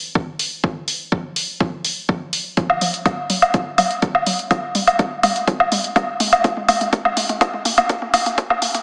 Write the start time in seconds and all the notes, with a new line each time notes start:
0.15 kick, mid tom
0.39 open hi-hat
0.64 kick, mid tom
0.88 open hi-hat
1.12 kick, mid tom
1.36 open hi-hat
1.60 kick, mid tom
1.85 open hi-hat
2.09 kick, mid tom
2.33 open hi-hat
2.57 kick, closed hi-hat, mid tom
2.70 low woodblock
2.81 open hi-hat, mid tom
2.94 closed hi-hat
3.06 kick, closed hi-hat, mid tom, low woodblock
3.30 open hi-hat, mid tom
3.42 closed hi-hat, low woodblock
3.54 kick, closed hi-hat, mid tom
3.78 open hi-hat, mid tom, low woodblock
3.91 closed hi-hat
4.02 kick, closed hi-hat, mid tom
4.15 low woodblock
4.26 open hi-hat, mid tom
4.39 closed hi-hat
4.51 kick, closed hi-hat, mid tom, low woodblock
4.75 open hi-hat, mid tom
4.87 closed hi-hat, low woodblock
4.99 kick, closed hi-hat, mid tom
5.23 open hi-hat, mid tom, low woodblock
5.36 closed hi-hat
5.48 kick, closed hi-hat, mid tom
5.60 low woodblock
5.72 open hi-hat, mid tom
5.84 closed hi-hat
5.96 kick, closed hi-hat, mid tom, low woodblock
6.20 open hi-hat, mid tom
6.33 closed hi-hat, low woodblock
6.44 kick, closed hi-hat, mid tom
6.57 mid tom
6.69 open hi-hat, mid tom, low woodblock
6.81 closed hi-hat, mid tom
6.93 kick, closed hi-hat, mid tom
7.05 mid tom, low woodblock
7.17 open hi-hat, mid tom
7.29 closed hi-hat, mid tom
7.41 kick, closed hi-hat, mid tom, low woodblock
7.54 mid tom
7.65 open hi-hat, mid tom
7.78 closed hi-hat, mid tom, low woodblock
7.89 kick, closed hi-hat, mid tom
8.02 mid tom
8.14 open hi-hat, mid tom, low woodblock
8.26 closed hi-hat, mid tom
8.38 kick, closed hi-hat, mid tom
8.50 mid tom, low woodblock
8.62 open hi-hat, mid tom
8.74 closed hi-hat, mid tom